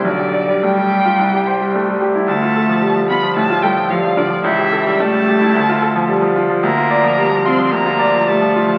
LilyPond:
<<
  \new Staff \with { instrumentName = "Violin" } { \time 4/4 \key d \dorian \tempo 4 = 110 d''4 g''2~ g''8 r8 | a''4. b''8 a''8 g''8 f''8 d''8 | e''4 a''2~ a''8 r8 | \key bes \major bes''4. c'''8 bes''4 a''4 | }
  \new Staff \with { instrumentName = "Cello" } { \time 4/4 \key d \dorian d4 g2~ g8 r8 | a4. b8 a8 g8 f8 d8 | e4 a2~ a8 r8 | \key bes \major bes4. c'8 bes4 a4 | }
  \new Staff \with { instrumentName = "Grand piano" } { \clef bass \time 4/4 \key d \dorian b,,16 g'16 d''16 g16 a16 g16 g'16 f'16 c,16 g'16 c''16 g16 a16 g16 g'16 e'16 | d,16 f'16 a'16 f16 g16 f16 f'16 f16 a,16 f'16 a'16 f16 g16 f16 f'16 f16 | cis,16 g'16 a'16 g16 a16 g16 g'16 e'16 d,16 f'16 a'16 f16 g16 f16 f'16 f16 | \key bes \major d,16 f'16 d''16 f16 g16 f16 f'16 f16 d,16 f'16 d''16 f16 g16 f16 f'16 f16 | }
>>